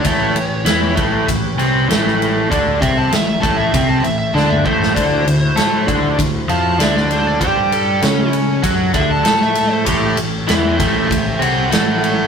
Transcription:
<<
  \new Staff \with { instrumentName = "Lead electric guitar" } { \time 4/4 \key a \mixolydian \tempo 4 = 98 cis''4. r2 r8 | r8 e''16 a''16 e''16 e''16 a''16 e''16 e''16 a''16 e''16 e''16 a''16 e''16 c''8~ | c''4. r4 a''8 e''16 d''16 c''16 d''16 | c''8 a'4 r4 e''16 a''8 e''8 c''16 |
g'8 r8 <c'' e''>8 <c'' e''>8 <c'' e''>8 <cis'' fis''>8 <cis'' fis''>8 <cis'' fis''>8 | }
  \new Staff \with { instrumentName = "Tonewheel organ" } { \time 4/4 \key a \mixolydian <cis' g' b'>1 | <cis' g' a'>1 | <e' fis' c''>1 | a'1 |
<cis' g' a'>1 | }
  \new Staff \with { instrumentName = "Overdriven electric guitar" } { \clef bass \time 4/4 \key a \mixolydian <a, a>8 a,8 <e e'>8 <a, a>8 a,8 <c c'>8 <a, a>4 | <d d'>8 <c c'>8 a,8 <a, a>8 <c c'>8 a,8 <d d'>8 <a, a>8 | <d d'>8 d8 <a a'>8 <d d'>8 d8 <f f'>8 <d d'>4 | <g g'>4 <cis' cis''>4 <fis fis'>8 <d d'>8 <a a'>4 |
<a, a>8 a,8 <e e'>8 <a, a>8 a,8 <c c'>8 <a, a>4 | }
  \new Staff \with { instrumentName = "Picked electric bass" } { \clef bass \time 4/4 \key a \mixolydian a,,8 a,,8 e,8 a,,8 a,,8 c,8 a,,4 | d,8 c,8 a,,8 a,,8 c,8 a,,8 d,8 a,,8 | d,8 d,8 a,8 d,8 d,8 f,8 d,4 | g,4 cis4 fis,8 d,8 a,4 |
a,,8 a,,8 e,8 a,,8 a,,8 c,8 a,,4 | }
  \new DrumStaff \with { instrumentName = "Drums" } \drummode { \time 4/4 <bd cymr>8 cymr8 <cymr sn>8 <bd cymr>8 <bd cymr>8 cymr8 <cymr sn>16 sn16 cymr8 | <bd cymr>8 <bd cymr>8 <cymr sn>8 <bd cymr>8 <bd cymr>8 cymr8 sn16 toml16 bd16 sn16 | <bd cymr>8 cymr8 <cymr sn>8 <bd cymr>8 <bd cymr>8 cymr8 <cymr sn>16 sn16 cymr8 | <bd cymr>8 cymr8 <cymr sn>8 cymr8 <bd cymr>8 <bd cymr>8 <cymr sn>16 sn16 cymr8 |
<bd cymr>8 cymr8 <cymr sn>8 <bd cymr>8 <bd cymr>8 cymr8 <cymr sn>8 cymr8 | }
>>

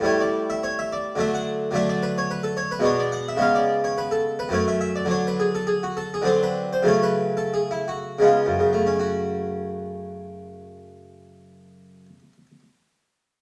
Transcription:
<<
  \new Staff \with { instrumentName = "Harpsichord" } { \time 3/4 \key a \major \tempo 4 = 100 cis''16 d''8 e''16 cis''16 e''16 d''8 e''16 fis''16 r8 | \key fis \minor e''16 d''16 b'16 cis''16 b'16 a'16 cis''16 b'16 cis''16 d''16 fis''16 e''16 | eis''16 d''8 cis''16 b'16 a'8 b'16 cis''16 e''16 e''16 d''16 | cis''16 b'16 gis'16 a'16 gis'16 fis'16 a'16 gis'16 a'16 b'8 c''16 |
cis''16 b'8 a'16 gis'16 e'16 fis'8 eis'4 | <fis, cis a cis' fis'>2.~ | <fis, cis a cis' fis'>2. | }
  \new Staff \with { instrumentName = "Harpsichord" } { \clef bass \time 3/4 \key a \major <a, g a e'>2 <d fis a d'>4 | \key fis \minor <d fis a d'>2 <b, gis b d'>4 | <cis gis b cis'>2 <fis, fis a cis'>4 | <d fis d'>2 <d fis c' d'>4 |
<cis fis a cis'>2 <cis gis b cis'>4 | r2. | r2. | }
>>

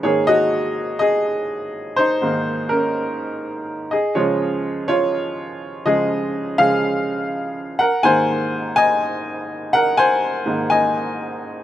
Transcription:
<<
  \new Staff \with { instrumentName = "Upright piano" } { \time 4/4 \key aes \mixolydian \tempo 4 = 124 <aes' des''>8 <ges' ees''>4. <aes' ees''>2 | <ees' c''>4. <des' bes'>2 r8 | <aes' ees''>8 <f' des''>4. <f' des''>2 | <aes' ees''>4. <aes' f''>2 r8 |
<bes' ges''>8 <c'' aes''>4. <ees'' aes''>2 | <bes' ges''>8 <c'' aes''>4. <ees'' aes''>2 | }
  \new Staff \with { instrumentName = "Upright piano" } { \clef bass \time 4/4 \key aes \mixolydian <aes, ees bes>8 r2. r8 | r8 <aes, ees bes>2.~ <aes, ees bes>8 | r8 <des f aes>8 r2. | <des f aes>4. <des f aes>8 r2 |
r8 <aes, ees bes>2.~ <aes, ees bes>8~ | <aes, ees bes>8 r4 <aes, ees bes>2~ <aes, ees bes>8 | }
>>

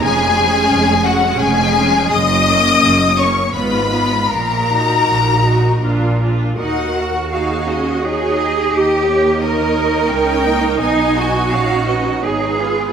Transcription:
<<
  \new Staff \with { instrumentName = "Violin section" } { \time 3/4 \key ees \minor \tempo 4 = 84 aes''4. ges''8 aes''4 | ees'''4. des'''8 ces'''4 | bes''2~ bes''8 r8 | ges''4 f''4 ees''4 |
ees''4 des''4 des''4 | ees''4 des''8 ces''8 ces''4 | }
  \new Staff \with { instrumentName = "Violin section" } { \time 3/4 \key ees \minor aes'4. ges'8 aes'4 | ees''4. des''8 ces''4 | bes'2~ bes'8 r8 | ges''4 f''8 ees''8 des''8 ees''8 |
ees''8 des''8 ees''4 g''4 | aes''4 f''8 ees''8 des''8 ces''8 | }
  \new Staff \with { instrumentName = "Viola section" } { \time 3/4 \key ees \minor << { des'8 des'4 des'4 des'8 | r8 des'4 des'8 f'8 f'8 | r8 ges'4 ges'8 f'8 f'8 | bes'4 aes'4 ges'8 g'8~ |
g'4 ees'2~ | ees'2 ees'8 f'8 | } \\ { aes8 aes4 aes4 aes8 | r8 bes4 bes8 ces'8 ces'8 | r8 ees'4 ees'8 d'8 d'8 | ges'4 ees'8 des'8 ees'4 |
ees'8 bes4. des'8 bes8 | ces'4 des'4 ces'4 | } >> }
  \new Staff \with { instrumentName = "Cello section" } { \clef bass \time 3/4 \key ees \minor f,4 f,4 f,4 | ges,4 ges,4 aes,4 | bes,4 bes,4 bes,4 | ees'8 ges'4. aes'4 |
g'4 bes'2 | ees'8 ges'4. aes'4 | }
  \new Staff \with { instrumentName = "Double bass section" } { \clef bass \time 3/4 \key ees \minor f,,4 f,,4 f,,4 | ges,,4 ges,,4 aes,,4 | bes,,4 bes,,4 bes,,4 | ees,2. |
ees,2 des,4 | ces,4 bes,,4 aes,,4 | }
>>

